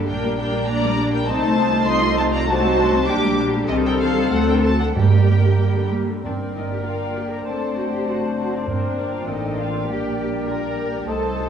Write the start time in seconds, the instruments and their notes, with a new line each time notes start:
Already playing: french horn section D4
0.07 double bass section A#1, french horn section G3, viola section A#3 D4, cello section D4, violin section A#4 G5
0.23 viola section G3 A#3
0.37 viola section A#3 D4, violin section A#4 G5
0.52 viola section G3 A#3
0.66 viola section A#3 D4, violin section D5 A#5
0.83 viola section G3 A#3
0.98 viola section A#3 D4
1.12 viola section G3 A#3, violin section A#4 G5
1.27 double bass section C2, french horn section A3 D#4, viola section C4 D#4, cello section D#4, violin section C5 A5
1.42 viola section A3 C4
1.57 viola section C4 D#4, cello section F4
1.72 viola section A3 C4
1.86 viola section C4 D#4, violin section D#5 C6
2.02 viola section A3 C4
2.17 viola section C4 D#4, violin section C5 A5
2.32 viola section A3 C4, violin section D5 A#5
2.47 french horn section F#3, viola section A3 D4, cello section F#4, violin section C5 A5
2.62 viola section F#3 C4
2.77 viola section A3 D4
2.93 viola section F#3 C4
3.07 double bass section A#1, french horn section G3 D4, viola section A#3 D4, cello section G4, violin section G5 D6
3.23 viola section G3 A#3
3.38 viola section A#3 D4
3.54 viola section G3 A#3
3.68 double bass section C2, viola section D#3 C4, french horn section C4, violin section G4 D#5, cello section A4
3.84 viola section G3 D#4, violin section A#4 G5
4.00 viola section D#3 C4, violin section A4 F5
4.15 viola section G3 D#4
4.31 double bass section D2, viola section F#3 C4, french horn section A3, violin section A4 F#5
4.47 viola section D3 D4, violin section A#4 G5
4.63 viola section F#3 C4, violin section C5 A5
4.79 viola section D3 D4, violin section A4 F#5
4.95 timpani G2, double bass section G2, viola section G3 A#3, french horn section G3 A#3, cello section G4, violin section A#4 G5
5.11 viola section D3 G3
5.28 viola section G3 A#3
5.43 viola section D3 G3
5.59 viola section G3 A#3
5.76 viola section D3 G3
5.91 viola section G3 A#3
6.07 viola section D3 G3
6.23 double bass section G1, timpani G2, french horn section A#3 D4, viola section C4 A#4, cello section D4, clarinet A#4, cor anglais D5, violin section D5, flute section G5
6.55 cello section D#4, violin section D#5
6.71 cello section G4, violin section G5
6.85 viola section A#3, cello section F4, violin section D5 F5
7.16 cello section G4, violin section G5
7.30 cello section A#4, violin section A#5
7.45 double bass section F#1, viola section A3 C5, french horn section C4, cello section A4, clarinet C5, violin section D5 A5, flute section A5
7.76 cello section F#4, violin section F#5
7.91 cello section G4, violin section G5
8.06 viola section A3, cello section F#4, violin section A4 F#5
8.37 cello section F#4, violin section F#5
8.52 cello section D4, violin section D5
8.66 double bass section G1, timpani G2, french horn section A#3 D4, cello section C4, viola section D4 A#4, violin section A#4 C5, cor anglais D5, flute section G5
8.97 cello section D4, violin section D5
9.12 cello section F4, violin section F5
9.27 double bass section A1, viola section C4 A4, cello section D#4, clarinet A#4, violin section C5 D#5
9.57 cello section F4, violin section F5
9.88 double bass section A#1, french horn section G3, viola section A#3 G4, cello section G4, violin section D5 G5
10.18 cello section G4, violin section G5
10.47 viola section F4, cello section A#4, violin section D5 A#5
10.78 viola section G4
11.07 double bass section C2, viola section A3 A4, french horn section A3 D#4, cello section A4, clarinet C5, violin section C5 A5, cor anglais D#5, flute section A5
11.37 viola section F4